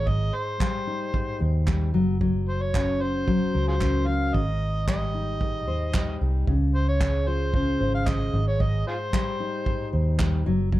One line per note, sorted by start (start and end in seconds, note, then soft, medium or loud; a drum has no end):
0.00 0.30 G#1 medium
0.00 0.60 G#3 medium
0.07 1.12 G#2 medium
0.07 0.37 D#5 medium
0.07 kick medium
0.35 1.41 C5 medium
0.60 1.66 G3 medium
0.60 kick loud
0.60 clap loud
0.87 1.99 D#4 medium
1.14 1.99 G#2 medium
1.14 kick medium
1.40 1.90 D#2 medium
1.40 1.99 C5 medium
1.67 1.93 G3 medium
1.67 kick loud
1.67 clap loud
1.94 3.50 F#1 medium
1.94 2.20 F#3 medium
2.21 3.26 F#3 medium
2.21 kick medium
2.48 2.63 C5 medium
2.62 3.03 C#5 medium
2.74 3.79 C#4 medium
2.74 kick loud
2.74 clap loud
3.00 4.06 F#4 medium
3.00 3.67 C5 medium
3.28 4.40 F#3 medium
3.28 kick loud
3.54 4.31 C#2 medium
3.54 4.39 A#4 medium
3.68 3.74 F4 medium
3.68 3.75 G#4 medium
3.68 4.09 C5 medium
3.80 4.39 C#4 medium
3.80 kick loud
3.80 clap loud
4.07 4.40 F#4 soft
4.07 4.35 F5 medium
4.34 5.68 G#1 medium
4.34 5.39 G#2 medium
4.34 4.87 D#5 medium
4.34 kick medium
4.88 5.93 G3 medium
4.88 6.17 D#5 medium
4.88 kick loud
4.88 clap loud
5.14 6.20 D#4 medium
5.41 6.53 G#2 medium
5.41 kick medium
5.68 6.17 D#2 medium
5.68 7.57 C5 medium
5.94 6.53 G3 medium
5.94 kick loud
5.94 clap loud
6.21 6.46 C2 medium
6.21 6.53 D#4 medium
6.47 7.77 C#2 medium
6.47 7.53 C#3 medium
6.47 kick medium
6.75 6.87 C5 medium
6.88 7.29 C#5 medium
7.00 8.06 G#3 medium
7.00 kick loud
7.00 clap loud
7.27 8.39 F4 soft
7.27 7.54 C5 medium
7.54 8.39 C#3 medium
7.54 7.92 C5 medium
7.54 kick loud
7.80 8.30 G#1 medium
7.80 9.92 C5 medium
7.95 8.09 F5 medium
8.07 9.13 G#3 medium
8.07 8.47 D#5 medium
8.07 kick loud
8.07 clap loud
8.33 8.83 G#1 medium
8.33 8.59 G#2 medium
8.48 8.63 C#5 medium
8.60 9.66 G#2 medium
8.60 8.87 D#5 medium
8.60 kick medium
8.88 8.96 F4 medium
8.88 8.94 G#4 medium
8.88 9.89 C5 medium
9.13 10.18 G3 medium
9.13 kick loud
9.13 clap loud
9.40 10.51 D#4 medium
9.66 10.52 G#2 medium
9.66 kick loud
9.93 10.42 D#2 medium
9.93 10.51 C5 medium
10.19 10.46 G3 medium
10.19 kick loud
10.19 clap loud
10.46 10.80 F#1 medium
10.46 10.71 F#3 medium
10.72 10.80 F#3 medium
10.72 kick medium